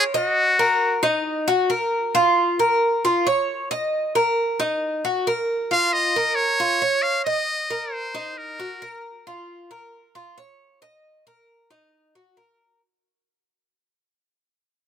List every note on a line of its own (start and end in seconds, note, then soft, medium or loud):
0.00 0.13 C#5 medium
0.14 1.01 F#4 medium
0.14 0.58 D#5 medium
0.59 1.03 A#4 medium
1.03 1.47 D#4 medium
1.48 1.70 F#4 medium
1.70 2.13 A#4 medium
2.15 2.58 F4 medium
2.59 3.03 A#4 medium
3.05 3.26 F4 medium
3.27 3.70 C#5 medium
3.71 4.14 D#5 medium
4.15 4.58 A#4 medium
4.60 5.03 D#4 medium
5.05 5.26 F#4 medium
5.27 5.70 A#4 medium
5.71 6.14 F4 medium
5.71 5.94 F5 loud
5.93 6.37 D#5 loud
6.16 6.59 A#4 medium
6.35 7.04 C#5 loud
6.60 6.81 F4 medium
6.82 7.25 C#5 medium
7.02 7.24 F5 loud
7.25 7.94 D#5 loud
7.25 7.70 D#5 medium
7.70 8.14 A#4 medium
7.92 8.39 C5 medium
8.15 8.58 D#4 medium
8.38 9.04 A#4 medium
8.59 8.81 F#4 medium
8.82 9.25 A#4 medium
9.27 9.70 F4 medium
9.71 10.14 A#4 medium
10.15 10.37 F4 medium
10.38 10.81 C#5 medium
10.82 11.25 D#5 medium
11.27 11.70 A#4 medium
11.70 12.14 D#4 medium
12.15 12.37 F#4 medium
12.37 12.80 A#4 medium